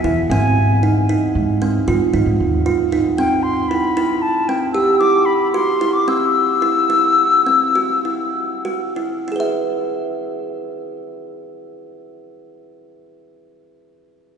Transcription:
0.04 0.24 E3 medium
0.04 0.24 E4 medium
0.04 0.31 E5 medium
0.30 1.11 G#1 medium
0.30 0.70 C4 medium
0.30 0.82 G#5 medium
0.83 1.03 D#4 medium
1.09 1.49 D#4 medium
1.35 1.75 G#2 medium
1.62 1.81 C4 medium
1.88 1.98 G#2 medium
1.88 2.07 F4 medium
2.14 2.24 G#2 medium
2.14 2.53 D#4 soft
2.26 2.36 G#2 medium
2.40 2.60 D#2 medium
2.66 2.86 F4 medium
2.92 3.12 D#4 medium
3.18 3.58 C4 medium
3.18 3.44 G5 medium
3.43 3.70 C6 medium
3.69 3.90 E4 medium
3.69 4.23 B5 medium
3.97 4.36 E4 medium
4.22 4.50 A5 medium
4.48 4.69 C4 medium
4.48 4.72 G5 medium
4.73 4.94 G4 medium
4.73 5.02 E6 medium
5.00 5.41 E4 soft
5.00 5.27 D6 medium
5.26 5.52 B5 medium
5.52 5.74 F#4 medium
5.52 5.95 C6 medium
5.81 6.01 E4 medium
5.93 6.10 D6 medium
6.08 6.49 C4 medium
6.08 8.66 E6 medium
6.62 6.83 E4 medium
6.90 7.33 E4 medium
7.46 7.68 C4 medium
7.75 7.98 F#4 medium
8.05 8.51 E4 soft
8.65 8.89 F#4 medium
8.96 9.20 E4 soft
9.28 12.39 E4 soft
9.28 12.43 G#4 soft
9.36 12.47 B4 soft
9.40 12.51 E5 soft

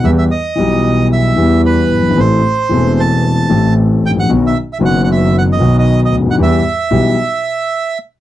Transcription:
0.04 0.27 E2 medium
0.04 0.27 E3 medium
0.04 0.27 G3 soft
0.04 0.27 B3 soft
0.04 0.27 G4 medium
0.04 0.11 E5 medium
0.18 0.24 E5 medium
0.31 1.07 D#5 medium
0.55 1.34 B1 medium
0.55 1.34 B2 medium
0.55 1.33 E3 medium
0.55 1.34 G3 soft
0.55 1.34 B3 soft
0.60 1.35 G4 medium
1.13 1.62 E5 medium
1.36 2.13 E2 medium
1.36 1.90 E2 medium
1.36 2.13 E3 medium
1.36 2.13 G3 soft
1.36 2.14 B3 soft
1.36 2.14 G4 medium
1.66 2.20 B4 medium
1.91 2.16 G1 soft
1.98 2.05 F#1 soft
2.04 2.11 G1 soft
2.11 2.18 G#1 medium
2.17 2.40 A1 medium
2.17 2.40 A2 medium
2.17 2.40 E3 medium
2.17 2.40 A3 soft
2.17 2.40 C4 soft
2.17 2.40 A4 medium
2.17 3.01 C5 medium
2.69 3.46 E1 medium
2.69 3.46 E2 medium
2.69 3.45 E3 medium
2.69 3.46 A3 soft
2.69 3.46 C4 medium
2.73 3.47 A4 medium
3.00 3.74 A5 medium
3.48 4.03 A1 medium
3.48 4.14 A1 medium
3.48 4.25 A2 medium
3.48 4.24 E3 soft
3.48 4.25 A3 soft
3.48 4.25 C4 soft
3.48 4.26 A4 medium
4.03 4.28 A1 soft
4.03 4.11 G5 medium
4.10 4.16 G#1 soft
4.16 4.22 A1 medium
4.16 4.31 F#5 medium
4.22 4.29 A#1 medium
4.29 4.51 B1 medium
4.29 4.51 B2 medium
4.29 4.51 D#3 medium
4.29 4.51 F#3 medium
4.29 4.51 B3 soft
4.29 4.51 F#4 medium
4.47 4.58 E5 medium
4.73 4.78 E5 medium
4.79 5.55 F#1 medium
4.79 5.56 F#1 medium
4.79 5.55 F#2 medium
4.79 5.55 D#3 medium
4.79 5.55 F#3 medium
4.79 5.56 B3 medium
4.79 5.56 F#4 medium
4.86 5.02 F#5 medium
5.04 5.09 F#5 medium
5.12 5.36 E5 medium
5.38 5.43 F#5 medium
5.53 5.76 D#5 medium
5.57 6.10 B1 medium
5.57 6.34 B1 medium
5.57 6.34 B2 medium
5.57 6.33 D#3 medium
5.57 6.34 F#3 soft
5.57 6.35 B3 medium
5.61 6.35 F#4 medium
5.79 6.00 D#5 medium
6.05 6.16 D#5 medium
6.11 6.37 D2 soft
6.19 6.26 C#2 soft
6.26 6.32 D2 medium
6.31 6.39 D#2 medium
6.31 6.35 F#5 medium
6.38 6.60 E2 medium
6.38 6.61 E2 medium
6.38 6.61 E3 medium
6.38 6.61 G3 medium
6.38 6.61 B3 soft
6.38 6.61 G4 medium
6.43 7.98 E5 medium
6.91 7.14 B1 medium
6.91 7.13 B2 medium
6.91 7.13 E3 medium
6.91 7.13 G3 soft
6.91 7.14 B3 medium
6.91 7.14 G4 medium

